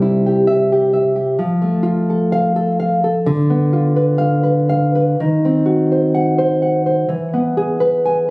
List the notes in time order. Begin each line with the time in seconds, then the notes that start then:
Already playing: C3 G3
0.02 E4
0.26 G4
0.47 E5
0.72 G4
0.93 E5
1.16 G4
1.39 F3
1.62 A3
1.83 F4
2.10 A4
2.32 F5
2.56 A4
2.80 F5
3.04 A4
3.26 D3
3.50 B3
3.73 F4
3.96 B4
4.18 F5
4.43 B4
4.69 F5
4.95 B4
5.20 D#3
5.45 C4
5.66 F#4
5.92 C5
6.15 F#5
6.38 C5
6.62 F#5
6.86 C5
7.09 E3
7.34 B3
7.57 G#4
7.80 B4
8.06 G#5